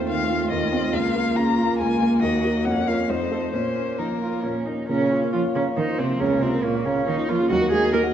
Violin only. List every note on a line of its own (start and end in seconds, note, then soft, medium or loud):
0.09 0.50 F5 medium
0.51 0.95 D#5 medium
0.93 1.38 F5 medium
1.36 1.78 A#5 medium
1.79 2.21 G#5 medium
2.23 2.67 D#5 medium
2.66 2.89 F#5 medium
2.87 3.11 F5 medium
3.10 3.52 C5 medium
3.53 4.00 C5 medium
3.98 4.66 A#4 soft
4.89 5.12 A#4 soft
5.11 5.79 C#5 soft
5.77 6.20 C5 soft
6.20 6.65 A#4 medium
6.63 7.50 C#5 soft
7.50 8.14 D#5 medium